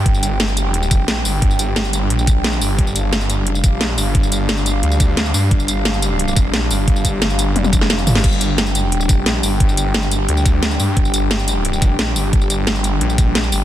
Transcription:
Already playing: analog synth pad G3 D4 G4 G5
0.06 detuned saw bass G1, kick, closed hi-hat
0.14 tambourine
0.23 closed hi-hat, tambourine
0.40 snare, closed hi-hat
0.48 tambourine
0.57 closed hi-hat, tambourine
0.74 closed hi-hat
0.83 tambourine
0.91 detuned saw bass F1, kick, closed hi-hat, tambourine
1.08 detuned saw bass A#1, snare, closed hi-hat
1.25 detuned saw bass G1, open hi-hat, tambourine
1.42 kick, closed hi-hat
1.51 tambourine
1.59 detuned saw bass G1, closed hi-hat, tambourine
1.76 snare, closed hi-hat
1.85 tambourine
1.93 closed hi-hat, tambourine
2.10 detuned saw bass A#1, closed hi-hat
2.19 tambourine
2.27 kick, closed hi-hat, tambourine
2.44 snare, closed hi-hat
2.53 tambourine
2.61 detuned saw bass G1, open hi-hat, tambourine
2.78 detuned saw bass G1, analog synth pad F5, kick, closed hi-hat
2.87 tambourine
2.96 closed hi-hat, tambourine
3.13 snare, closed hi-hat
3.21 tambourine
3.30 closed hi-hat, tambourine
3.37 detuned saw bass F#1
3.47 closed hi-hat
3.55 tambourine
3.64 detuned saw bass F1, kick, closed hi-hat, tambourine
3.81 detuned saw bass A#1, snare, closed hi-hat
3.98 detuned saw bass G1, open hi-hat, tambourine
4.15 kick, closed hi-hat
4.23 tambourine
4.32 detuned saw bass G1, closed hi-hat, tambourine
4.49 snare, closed hi-hat
4.57 tambourine
4.66 closed hi-hat, tambourine
4.83 detuned saw bass D2, closed hi-hat
4.92 tambourine
5.00 kick, closed hi-hat, tambourine
5.17 snare, closed hi-hat
5.26 tambourine
5.34 detuned saw bass G2, open hi-hat, tambourine
5.51 detuned saw bass G1, kick, closed hi-hat
5.60 tambourine
5.68 closed hi-hat, tambourine
5.85 snare, closed hi-hat
5.94 tambourine
6.02 closed hi-hat, tambourine
6.19 closed hi-hat
6.28 tambourine
6.36 detuned saw bass F1, kick, closed hi-hat, tambourine
6.53 detuned saw bass A#1, snare, closed hi-hat
6.71 detuned saw bass G1, open hi-hat, tambourine
6.88 kick, closed hi-hat
6.96 tambourine
7.05 detuned saw bass G1, kick, closed hi-hat, tambourine
7.22 snare, closed hi-hat
7.30 tambourine
7.39 closed hi-hat, tambourine
7.56 detuned saw bass F1, closed hi-hat, high tom
7.64 high tom, tambourine
7.73 kick, closed hi-hat, tambourine
7.81 snare
7.90 snare, closed hi-hat
7.98 tambourine
8.07 detuned saw bass G1, mid tom, open hi-hat, tambourine
8.15 snare
8.24 detuned saw bass G1, analog synth pad G5, kick, closed hi-hat, crash
8.32 tambourine
8.41 closed hi-hat, tambourine
8.58 snare, closed hi-hat
8.67 tambourine
8.75 closed hi-hat, tambourine
8.92 closed hi-hat
9.01 tambourine
9.09 detuned saw bass F1, kick, closed hi-hat, tambourine
9.26 detuned saw bass A#1, snare, closed hi-hat
9.43 detuned saw bass G1, open hi-hat, tambourine
9.60 kick, closed hi-hat
9.69 tambourine
9.77 detuned saw bass G1, closed hi-hat, tambourine
9.94 snare, closed hi-hat
10.03 tambourine
10.11 closed hi-hat, tambourine
10.29 detuned saw bass D2, closed hi-hat
10.37 tambourine
10.46 kick, closed hi-hat, tambourine
10.63 snare, closed hi-hat
10.71 tambourine
10.80 detuned saw bass G2, open hi-hat, tambourine
10.97 detuned saw bass G1, kick, closed hi-hat
11.05 tambourine
11.14 closed hi-hat, tambourine
11.31 snare, closed hi-hat
11.39 tambourine
11.48 closed hi-hat, tambourine
11.65 closed hi-hat
11.73 tambourine
11.82 detuned saw bass F1, kick, closed hi-hat, tambourine
11.99 detuned saw bass A#1, snare, closed hi-hat
12.16 detuned saw bass G1, open hi-hat, tambourine
12.33 kick, closed hi-hat
12.42 tambourine
12.50 detuned saw bass G1, closed hi-hat, tambourine
12.67 snare, closed hi-hat
12.76 tambourine
12.84 closed hi-hat, tambourine
13.01 detuned saw bass A#1, closed hi-hat
13.10 tambourine
13.18 kick, closed hi-hat, tambourine
13.35 snare, closed hi-hat
13.44 tambourine
13.52 detuned saw bass G1, open hi-hat, tambourine

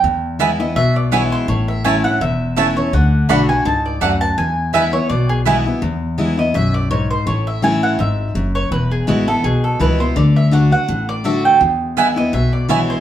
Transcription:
0.03 upright bass E2, steel-string acoustic guitar E2
0.39 steel-string acoustic guitar E3 G#3 B3 E4, mandolin B3 E4 B4 G#5
0.60 steel-string acoustic guitar B3 E4, mandolin D#5
0.76 upright bass B1, steel-string acoustic guitar B2, mandolin E5
0.96 mandolin D5
1.12 steel-string acoustic guitar E3 G#3 B3 E4, mandolin B3 E4 B4 C#5 G#5
1.32 mandolin C5
1.48 upright bass A1, steel-string acoustic guitar A2, mandolin C#5
1.68 mandolin E5
1.84 steel-string acoustic guitar E3 A3 C#4 E4, mandolin A3 E4 C#5 G#5 A5
2.04 steel-string acoustic guitar C#4 E4, mandolin F#5
2.21 upright bass E1, steel-string acoustic guitar E2, mandolin E5
2.56 steel-string acoustic guitar E3 A3 C#4 E4, mandolin A3 E4 C#5 A5
2.76 steel-string acoustic guitar C#4 E4, mandolin C#5
2.93 upright bass D2, steel-string acoustic guitar D3, mandolin F#5
3.29 upright bass B1, steel-string acoustic guitar D3 A3 D4 F#4, mandolin A3 F#4 D5 F#5 B5
3.49 steel-string acoustic guitar D4 F#4, mandolin G#5
3.65 upright bass C#2, steel-string acoustic guitar G#2, mandolin A5
3.86 mandolin D5
4.01 upright bass D2, steel-string acoustic guitar F#2, mandolin A3 F#4 D5 F#5
4.21 mandolin A5
4.38 upright bass E2, steel-string acoustic guitar E2, mandolin G#5
4.73 steel-string acoustic guitar E3 G#3 B3 E4, mandolin B3 E4 B4 E5 G#5
4.93 steel-string acoustic guitar B3 E4, mandolin C#5
5.10 upright bass B1, steel-string acoustic guitar B2, mandolin D5
5.29 mandolin G#4
5.45 steel-string acoustic guitar E3 G#3 B3 E4, mandolin B3 E4 B4 G#5
5.66 steel-string acoustic guitar B3 E4
5.82 steel-string acoustic guitar E2, upright bass E2
6.18 steel-string acoustic guitar E3 G#3 B3 E4
6.37 steel-string acoustic guitar B3 E4, mandolin D#5
6.54 upright bass B1, steel-string acoustic guitar F#2, mandolin E5
6.74 mandolin D5
6.91 steel-string acoustic guitar G#2, mandolin C#5
7.11 mandolin C5
7.26 upright bass A1, steel-string acoustic guitar A2, mandolin C#5
7.47 mandolin E5
7.62 steel-string acoustic guitar E3 A3 C#4 E4, mandolin G#5
7.83 mandolin F#5
7.99 upright bass G#1, steel-string acoustic guitar G#2, mandolin E5
8.35 upright bass F#1, steel-string acoustic guitar F#2
8.55 mandolin C#5
8.71 upright bass E1, steel-string acoustic guitar E2, mandolin B4
8.91 mandolin G#4
9.07 upright bass A1, steel-string acoustic guitar E3 G#3 B3 E4, mandolin F#4
9.27 steel-string acoustic guitar B3 E4, mandolin A4
9.44 upright bass B1, steel-string acoustic guitar B2, mandolin G#4
9.64 mandolin A4
9.80 upright bass C#2, steel-string acoustic guitar E3 G#3 B3 E4, mandolin B4
9.99 steel-string acoustic guitar B3 E4, mandolin C5
10.16 upright bass D2, steel-string acoustic guitar D3, mandolin D5
10.36 mandolin E5
10.51 steel-string acoustic guitar D3 A3 D4 F#4, mandolin F#5
10.71 steel-string acoustic guitar D4 F#4, mandolin F#5
10.88 upright bass A1, steel-string acoustic guitar A2
11.09 mandolin D5
11.24 steel-string acoustic guitar D3 A3 D4 F#4, mandolin E5
11.45 mandolin G5
11.61 steel-string acoustic guitar E2, upright bass E2
11.97 steel-string acoustic guitar E3 G#3 B3 E4, mandolin B3 E4 B4 G#5
12.16 steel-string acoustic guitar B3 E4, mandolin D#5
12.33 upright bass B1, steel-string acoustic guitar B2, mandolin E5
12.53 mandolin D5
12.69 steel-string acoustic guitar E3 G#3 B3 E4, mandolin B3 E4 B4 C#5 G#5
12.90 mandolin C5

